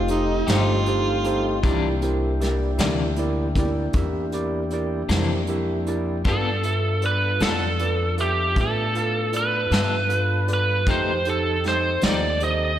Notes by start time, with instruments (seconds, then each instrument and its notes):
Already playing: upright bass F1, tonewheel organ A3 C4 D#4 G4
0.08 tine electric piano D#4 G4 A4 D#5, harmonica D#4, closed hi-hat
0.47 upright bass G1, clean electric guitar F3 A3 D#4 G4, tine electric piano D#4 G4 A4 C5, harmonica F4, snare, closed hi-hat
0.86 tine electric piano D#4 G4 A4 C5, closed hi-hat
1.24 tine electric piano D#4 G4 A4 C5, closed hi-hat
1.63 upright bass C2, clean electric guitar C3 E3 A#3 D4, tonewheel organ A#3 D4 E4 G4, tine electric piano E4 G4 A#4 D5, kick, closed hi-hat
2.02 tine electric piano E4 G4 A#4 C5, closed hi-hat
2.41 tine electric piano E4 G4 A#4 D5, snare, closed hi-hat
2.78 upright bass D2, clean electric guitar C3 E3 A#3 D4, tine electric piano E4 G4 A#4 D5, snare, closed hi-hat
3.16 tine electric piano E4 G4 A#4 D5, closed hi-hat
3.55 tine electric piano E4 G4 A#4 D5, kick, closed hi-hat
3.93 upright bass E2, tine electric piano E4 G4 A#4 E5, kick, closed hi-hat
4.32 tine electric piano E4 G4 A#4 D5, closed hi-hat
4.71 tine electric piano E4 G4 A#4 D5, closed hi-hat
5.09 upright bass F2, clean electric guitar C3 E3 A#3 D4, tine electric piano E4 G4 A#4 C5, snare, closed hi-hat
5.47 tine electric piano E4 G4 A#4 E5, closed hi-hat
5.87 tine electric piano E4 G4 A#4 D5, closed hi-hat
6.25 upright bass G2, clean electric guitar G3 B3 F4 A4, tonewheel organ B3 D4 F4 A4, tine electric piano F4 A4 B4 D5, lead electric guitar A4, kick, closed hi-hat
6.63 tine electric piano F4 A4 B4 E5, closed hi-hat
7.02 tine electric piano F4 A4 B4 D5, closed hi-hat
7.06 lead electric guitar B4
7.40 upright bass F2, clean electric guitar G3 B3 F4 A4, tine electric piano F4 A4 B4 D5, lead electric guitar A4, snare, closed hi-hat
7.79 tine electric piano F4 A4 B4 D5, closed hi-hat
8.18 tine electric piano F4 A4 B4 E5, lead electric guitar G4, closed hi-hat
8.55 upright bass A2, tine electric piano F4 A4 B4 E5, kick, closed hi-hat
8.61 lead electric guitar A4
8.95 tine electric piano F4 A4 B4 F5, closed hi-hat
9.32 tine electric piano F4 A4 B4 D5, closed hi-hat
9.37 lead electric guitar B4
9.71 upright bass G2, clean electric guitar G3 B3 F4 A4, tine electric piano F4 A4 B4 E5, snare, closed hi-hat
10.09 tine electric piano F4 A4 B4 F5, closed hi-hat
10.47 tine electric piano F4 A4 B4 D5, closed hi-hat
10.53 lead electric guitar B4
10.86 upright bass F2, clean electric guitar F3 A3 D#4 G4, tonewheel organ C4 D#4 G4 A4, tine electric piano D#4 G4 A4 C5, kick, closed hi-hat
10.91 lead electric guitar C5
11.25 tine electric piano D#4 G4 A4 C5, closed hi-hat
11.30 lead electric guitar A4
11.64 tine electric piano D#4 G4 A4 D#5, lead electric guitar C5, snare, closed hi-hat
12.01 upright bass D#2, clean electric guitar A3 D#4 G4, tine electric piano D#4 G4 A4 C5, lead electric guitar D5, snare, closed hi-hat
12.06 clean electric guitar F3
12.40 tine electric piano D#4 G4 A4 C5, lead electric guitar D#5, closed hi-hat